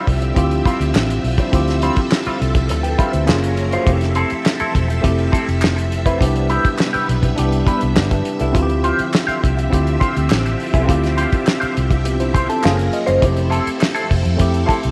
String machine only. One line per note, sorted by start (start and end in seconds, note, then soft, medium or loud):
0.00 3.24 D3 medium
0.00 3.82 F3 medium
0.00 3.24 C4 medium
0.00 1.50 G4 medium
0.00 3.24 E5 medium
1.53 3.26 A4 medium
3.28 3.86 F#3 medium
3.28 3.86 C#4 medium
3.28 3.86 A#4 medium
3.86 6.18 F3 medium
3.86 6.18 C4 medium
3.86 6.18 A4 medium
3.86 12.59 E5 medium
6.20 8.52 C3 medium
6.20 8.52 G3 medium
6.20 8.52 B3 medium
8.54 12.59 D3 medium
8.54 13.18 F3 medium
8.54 12.60 C4 medium
8.54 12.60 G4 medium
12.63 13.21 F#3 medium
12.63 13.21 C#4 medium
12.63 13.22 A#4 medium
13.22 14.91 F3 medium
13.22 14.91 C4 medium
13.22 14.91 E4 medium
13.22 14.91 A4 medium